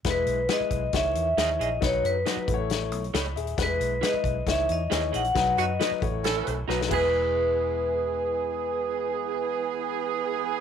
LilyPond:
<<
  \new Staff \with { instrumentName = "Vibraphone" } { \time 4/4 \key e \major \tempo 4 = 136 b'4 dis''4 e''4. dis''8 | cis''8 b'4 r2 r8 | b'4 dis''4 e''8 dis''4 fis''8~ | fis''8 dis''4 r2 b'8~ |
b'1~ | b'1 | }
  \new Staff \with { instrumentName = "Clean electric guitar" } { \time 4/4 \key e \major r4 <e' gis' b'>16 r4. r16 <e' gis' dis''>16 r16 <e' gis' dis''>8 | r4 <dis' fis' b'>16 r4. r16 <e' a' cis''>16 r8. | r4 <e' gis' b'>16 r4. r16 <e' gis' dis''>16 r16 <e' gis' dis''>8 | r4 <fis' b' dis''>16 r4. r16 <dis' fis' b'>16 r16 <e' gis' b'>8~ |
<e' gis' b'>1~ | <e' gis' b'>1 | }
  \new Staff \with { instrumentName = "Grand piano" } { \time 4/4 \key e \major << { r1 | r2. <dis'' b''>8 <gis' e''>8~ | <gis' e''>8 r2. r8 | r1 |
r1 | r1 | } \\ { <gis e' b'>8 r8 <gis e' b'>8 r8 <dis e cis''>8 r8 <e dis' cis''>8 r8 | <fis dis' b'>8 r8 <fis dis' b'>8 <a e' b' cis''>4 r4. | <g gis e' b'>8 r8 <gis e' b'>8 r8 <e dis' cis''>8 r8 <e dis' cis''>8 r8 | <fis dis' b'>8 r8 <fis dis' b'>8 <a e' cis''>4 r8 <fis dis' b'>8 <gis e' b'>8~ |
<gis e' b'>1~ | <gis e' b'>1 | } >> }
  \new Staff \with { instrumentName = "Horn section" } { \time 4/4 \key e \major r1 | r1 | r1 | r8 <b dis' fis'>16 r4 r16 <cis' e' a'>8. r8. <e b gis'>8~ |
<e b gis'>1~ | <e b gis'>1 | }
  \new Staff \with { instrumentName = "Fingered electric bass" } { \clef bass \time 4/4 \key e \major e,,8 b,,8 r8 b,,8 cis,8 e,8 dis,8 ais,,8 | b,,8 fis,8 r8 a,,4 b,,8 cis,8 dis,,8 | e,,8 b,,8 r8 b,,8 cis,8 e,8 dis,8 ais,,8 | b,,8 fis,8 r8 a,,4 b,,8 b,,8 e,,8~ |
e,,1~ | e,,1 | }
  \new DrumStaff \with { instrumentName = "Drums" } \drummode { \time 4/4 <hh bd sn>8 hh8 <hh sn>8 <hh bd>8 <hh bd sn>8 hh8 <hh sn>8 hh8 | <hh bd sn>8 hh8 <hh sn>8 <hh bd>8 <hh sn>8 hh16 hh16 <hh sn>8 hh16 hh16 | <hh bd sn>8 hh8 <hh sn>8 <hh bd>8 <hh bd sn>8 hh8 <hh sn>8 hh16 hh16 | <hh bd sn>8 hh8 <hh sn>8 <hh bd>8 <hh sn>8 hh8 sn16 sn16 <cymc bd>8 |
r4 r4 r4 r4 | r4 r4 r4 r4 | }
>>